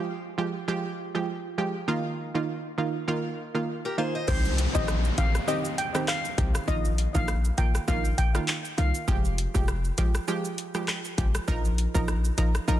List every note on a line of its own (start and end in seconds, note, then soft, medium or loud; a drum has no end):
0.38 0.54 F3 medium
0.38 0.54 G#3 medium
0.38 0.54 G4 medium
0.68 0.84 F3 medium
0.68 0.84 G#3 medium
0.68 0.84 G4 loud
1.15 1.27 F3 medium
1.15 1.27 G#3 medium
1.15 1.28 G4 medium
1.58 1.74 F3 medium
1.58 1.74 G#3 medium
1.58 1.74 G4 medium
1.88 2.31 D#3 medium
1.88 2.31 A#3 medium
1.88 2.31 F4 loud
2.35 2.47 D#3 medium
2.35 2.47 A#3 medium
2.35 2.48 F4 medium
2.78 2.94 D#3 medium
2.78 2.94 A#3 medium
2.78 2.94 F4 medium
3.08 3.24 D#3 medium
3.08 3.24 A#3 medium
3.08 3.24 F4 loud
3.55 3.67 D#3 medium
3.55 3.67 A#3 medium
3.55 3.67 F4 medium
3.85 3.98 G4 medium
3.85 3.97 A#4 medium
3.98 4.14 D#3 medium
3.98 4.14 A#3 medium
3.98 4.14 F4 medium
3.98 4.14 G#4 medium
3.98 4.14 C5 medium
4.15 4.44 C5 medium
4.15 4.43 D#5 medium
4.28 4.67 C2 loud
4.28 4.71 D#3 loud
4.28 4.71 C4 medium
4.28 4.71 G4 loud
4.28 4.39 C5 loud
4.28 kick loud
4.28 crash loud
4.28 downlifter medium
4.28 shaker medium
4.45 shaker medium
4.58 closed hi-hat medium
4.58 shaker medium
4.74 5.11 A#1 medium
4.74 4.87 D#3 medium
4.74 4.87 C4 medium
4.74 4.87 G4 medium
4.74 4.84 D#5 medium
4.74 kick medium
4.74 shaker medium
4.88 cross-stick medium
4.88 shaker medium
5.05 shaker medium
5.18 5.34 D#3 medium
5.18 5.34 C4 medium
5.18 5.34 G4 medium
5.18 5.29 F5 medium
5.18 kick loud
5.18 closed hi-hat medium
5.18 shaker medium
5.35 cross-stick medium
5.35 shaker medium
5.48 5.64 D#3 loud
5.48 5.64 C4 medium
5.48 5.64 G4 loud
5.48 5.59 D#5 medium
5.48 shaker medium
5.65 shaker medium
5.78 5.89 G5 medium
5.78 closed hi-hat medium
5.78 shaker soft
5.95 6.07 D#3 medium
5.95 6.07 C4 medium
5.95 6.08 G4 medium
5.95 cross-stick loud
5.95 shaker medium
6.08 6.52 F5 medium
6.08 cross-stick medium
6.08 clap loud
6.08 shaker medium
6.25 shaker soft
6.38 6.52 C2 medium
6.38 6.54 D#3 medium
6.38 6.54 C4 medium
6.38 6.54 G4 medium
6.38 kick loud
6.38 closed hi-hat medium
6.38 shaker medium
6.55 cross-stick loud
6.55 shaker medium
6.68 7.07 A#1 loud
6.68 7.11 D#3 loud
6.68 7.11 A#3 medium
6.68 7.11 F4 loud
6.68 6.79 D#5 loud
6.68 kick loud
6.68 shaker medium
6.85 shaker medium
6.98 closed hi-hat medium
6.98 shaker medium
7.14 7.51 A#1 medium
7.14 7.27 D#3 medium
7.14 7.27 A#3 medium
7.14 7.27 F4 medium
7.14 7.24 F5 medium
7.14 kick medium
7.14 shaker medium
7.28 cross-stick medium
7.28 shaker medium
7.45 shaker medium
7.58 7.74 D#3 medium
7.58 7.74 A#3 medium
7.58 7.74 F4 medium
7.58 7.69 G5 medium
7.58 kick loud
7.58 closed hi-hat medium
7.58 shaker medium
7.75 cross-stick medium
7.75 shaker medium
7.88 8.13 A#1 loud
7.88 8.04 D#3 loud
7.88 8.04 A#3 medium
7.88 8.04 F4 loud
7.88 7.99 F5 medium
7.88 kick medium
7.88 shaker medium
8.05 shaker medium
8.18 8.29 G5 medium
8.18 kick medium
8.18 closed hi-hat medium
8.18 shaker medium
8.35 8.47 D#3 medium
8.35 8.47 A#3 medium
8.35 8.48 F4 medium
8.35 cross-stick medium
8.35 shaker medium
8.48 clap medium
8.48 shaker medium
8.65 shaker medium
8.78 8.92 C2 loud
8.78 8.94 D#3 medium
8.78 8.94 A#3 medium
8.78 8.94 F4 medium
8.78 8.89 F5 medium
8.78 closed hi-hat medium
8.78 shaker medium
8.95 shaker medium
9.08 9.47 F1 loud
9.08 9.51 F3 loud
9.08 9.51 G#3 medium
9.08 9.51 G4 loud
9.08 kick loud
9.08 shaker medium
9.25 shaker medium
9.38 closed hi-hat medium
9.38 shaker medium
9.54 9.91 F1 medium
9.54 9.67 F3 medium
9.54 9.67 G#3 medium
9.54 9.67 G4 medium
9.54 kick loud
9.54 shaker medium
9.68 cross-stick medium
9.68 shaker medium
9.85 shaker medium
9.98 10.14 F3 medium
9.98 10.14 G#3 medium
9.98 10.14 G4 medium
9.98 kick loud
9.98 closed hi-hat medium
9.98 shaker medium
10.15 cross-stick loud
10.15 shaker medium
10.28 10.44 F3 loud
10.28 10.44 G#3 medium
10.28 10.44 G4 loud
10.28 shaker medium
10.45 shaker medium
10.58 closed hi-hat medium
10.58 shaker soft
10.75 10.87 F3 medium
10.75 10.87 G#3 medium
10.75 10.88 G4 medium
10.75 cross-stick loud
10.75 shaker medium
10.88 cross-stick medium
10.88 clap medium
10.88 shaker medium
11.05 shaker medium
11.18 11.32 G1 loud
11.18 11.34 F3 medium
11.18 11.34 G#3 medium
11.18 11.34 G4 medium
11.18 kick loud
11.18 closed hi-hat medium
11.18 shaker medium
11.35 cross-stick loud
11.35 shaker medium
11.48 11.87 A#1 loud
11.48 11.91 F3 loud
11.48 11.91 D#4 medium
11.48 11.91 A#4 loud
11.48 kick loud
11.48 shaker medium
11.65 shaker medium
11.78 closed hi-hat medium
11.78 shaker medium
11.95 12.31 A#1 medium
11.95 12.07 F3 medium
11.95 12.07 D#4 medium
11.95 12.08 A#4 medium
11.95 kick medium
11.95 shaker medium
12.08 cross-stick medium
12.08 shaker medium
12.25 shaker medium
12.38 12.54 F3 medium
12.38 12.54 D#4 medium
12.38 12.54 A#4 medium
12.38 kick loud
12.38 closed hi-hat medium
12.38 shaker medium
12.55 cross-stick loud
12.55 shaker medium
12.68 12.80 A#1 loud
12.68 12.80 F3 loud
12.68 12.80 D#4 medium
12.68 12.80 A#4 loud
12.68 shaker medium